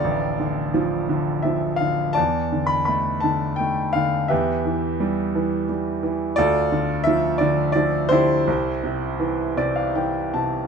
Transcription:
0.00 0.39 D3 medium
0.00 0.74 F3 medium
0.00 0.70 F4 medium
0.00 2.19 A4 medium
0.00 2.19 C5 medium
0.00 0.33 D5 medium
0.00 1.76 F5 medium
0.00 2.19 G5 medium
0.04 2.13 A1 medium
0.39 1.08 D3 soft
0.74 1.43 F3 medium
1.09 1.79 D3 medium
1.42 2.15 F3 soft
1.42 1.81 E5 medium
1.76 2.16 F5 medium
1.81 2.16 D3 soft
2.13 3.19 D5 medium
2.13 2.70 A5 medium
2.17 4.27 E2 medium
2.52 3.22 D3 soft
2.67 2.84 B5 medium
2.85 3.58 A3 medium
2.85 3.23 B5 medium
3.20 3.94 D3 medium
3.20 3.59 A5 medium
3.56 4.29 A3 soft
3.56 3.95 G5 medium
3.93 4.30 D3 soft
3.93 4.31 F5 medium
4.28 6.34 E2 medium
4.28 5.65 G4 medium
4.28 5.65 B4 medium
4.28 5.64 E5 medium
4.65 5.34 E3 soft
5.00 5.68 G3 medium
5.35 6.02 E3 medium
5.69 6.36 G3 soft
6.03 6.37 E3 soft
6.36 8.43 D2 medium
6.36 7.37 F4 medium
6.36 7.37 A4 medium
6.36 7.08 D5 medium
6.72 7.39 D3 soft
7.04 7.74 F3 medium
7.04 7.41 E5 medium
7.38 8.09 D3 medium
7.38 7.71 D5 medium
7.72 8.45 F3 medium
7.72 8.11 D5 medium
8.09 8.46 D3 soft
8.09 9.92 E4 medium
8.09 9.92 G4 medium
8.09 9.90 C5 medium
8.47 10.67 C2 medium
8.83 9.56 C3 medium
9.20 9.94 E3 medium
9.57 10.32 C3 medium
9.57 9.75 D5 medium
9.76 9.94 F5 soft
9.95 10.67 E3 soft
9.95 10.31 G5 medium
10.34 10.67 C3 soft
10.34 10.67 A5 medium

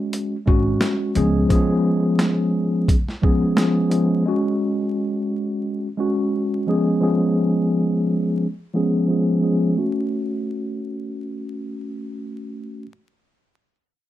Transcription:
0.00 0.35 G#3 loud
0.00 0.36 C#4 medium
0.00 0.36 F#4 loud
0.13 closed hi-hat loud
0.46 0.75 G#1 medium
0.46 1.14 G#3 medium
0.46 1.16 C#4 medium
0.46 1.17 F#4 loud
0.46 kick medium
0.81 snare loud
0.81 closed hi-hat medium
1.15 1.43 C#2 loud
1.15 1.48 F3 medium
1.15 1.48 G#3 medium
1.15 1.48 B3 medium
1.15 1.48 C#4 medium
1.15 1.49 G#4 loud
1.15 closed hi-hat soft
1.49 2.93 F3 loud
1.49 2.93 G#3 medium
1.49 2.94 B3 medium
1.49 2.94 C#4 medium
1.49 2.94 G#4 loud
1.49 kick loud
1.49 closed hi-hat medium
2.19 snare loud
2.19 closed hi-hat medium
2.88 kick loud
2.88 closed hi-hat loud
3.08 snare soft
3.22 3.54 F3 medium
3.22 3.55 G#3 medium
3.22 3.55 B3 loud
3.22 3.55 C#4 medium
3.22 3.56 G#4 loud
3.22 kick medium
3.56 3.88 F3 medium
3.56 3.89 G#3 medium
3.56 3.89 B3 medium
3.56 3.90 C#4 medium
3.56 3.90 G#4 medium
3.56 snare loud
3.56 closed hi-hat medium
3.89 4.23 F3 medium
3.89 4.23 G#3 medium
3.89 4.23 B3 medium
3.89 4.24 C#4 medium
3.89 4.24 G#4 medium
3.89 closed hi-hat soft
4.26 5.87 G#3 medium
4.26 5.87 C#4 medium
4.26 5.88 F#4 loud
5.97 6.66 G#3 medium
5.97 6.68 C#4 medium
5.97 6.68 F#4 loud
6.67 6.99 F3 medium
6.67 7.00 G#3 medium
6.67 7.00 B3 medium
6.67 7.00 C#4 medium
6.67 7.01 G#4 loud
7.01 8.45 F3 medium
7.01 8.45 G#3 medium
7.01 8.46 B3 medium
7.01 8.46 C#4 medium
7.01 8.46 G#4 loud
8.74 9.06 F3 medium
8.74 9.06 G#3 medium
8.74 9.07 B3 medium
8.74 9.07 C#4 medium
8.74 9.07 G#4 loud
9.08 9.39 F3 medium
9.08 9.40 G#3 medium
9.08 9.41 B3 medium
9.08 9.41 C#4 medium
9.08 9.42 G#4 medium
9.41 9.74 F3 medium
9.41 9.75 G#3 medium
9.41 9.75 B3 medium
9.41 9.75 C#4 medium
9.41 9.75 G#4 medium
9.77 12.84 A3 medium
9.77 12.84 C#4 medium
9.77 12.85 F#4 medium

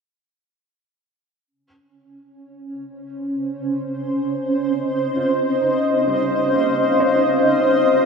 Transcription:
1.47 8.05 C#4 medium
2.51 8.05 C5 medium
3.69 8.05 D#5 medium
4.84 8.05 F5 medium
5.16 6.04 F4 medium
5.61 6.73 D#4 medium
5.61 7.19 C5 medium
6.07 6.95 G3 soft
6.54 8.05 A#3 soft
6.54 8.05 G4 medium
7.00 8.05 C#5 medium

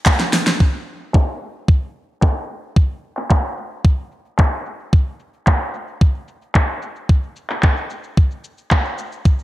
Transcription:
0.06 kick loud
0.06 clap loud
0.06 closed hi-hat medium
0.20 snare soft
0.20 closed hi-hat soft
0.33 snare medium
0.33 open hi-hat loud
0.47 snare medium
0.47 closed hi-hat soft
0.60 kick loud
1.14 kick loud
1.14 clap loud
1.41 shaker medium
1.55 shaker soft
1.68 kick loud
1.96 shaker medium
2.09 shaker soft
2.22 kick loud
2.22 clap loud
2.49 shaker medium
2.63 shaker soft
2.76 kick loud
3.03 shaker medium
3.17 clap soft
3.17 shaker soft
3.31 kick loud
3.31 clap loud
3.58 shaker medium
3.71 shaker soft
3.85 kick loud
4.11 shaker medium
4.25 shaker soft
4.39 kick loud
4.39 clap loud
4.66 shaker medium
4.80 shaker soft
4.93 kick loud
5.20 shaker medium
5.33 shaker soft
5.47 kick loud
5.47 clap loud
5.74 shaker medium
5.88 shaker soft
6.01 kick loud
6.15 shaker soft
6.28 shaker medium
6.42 shaker soft
6.55 kick loud
6.55 clap loud
6.69 shaker soft
6.82 shaker medium
6.96 shaker soft
7.09 kick loud
7.23 shaker soft
7.36 shaker medium
7.50 clap soft
7.50 shaker soft
7.63 kick loud
7.63 clap loud
7.63 shaker soft
7.77 shaker soft
7.90 shaker medium
8.04 shaker soft
8.17 kick loud
8.17 shaker soft
8.31 shaker soft
8.44 shaker medium
8.58 shaker soft
8.71 kick loud
8.71 clap loud
8.71 shaker soft
8.85 shaker soft
8.98 shaker medium
9.12 shaker soft
9.25 kick loud
9.25 shaker soft
9.39 shaker soft

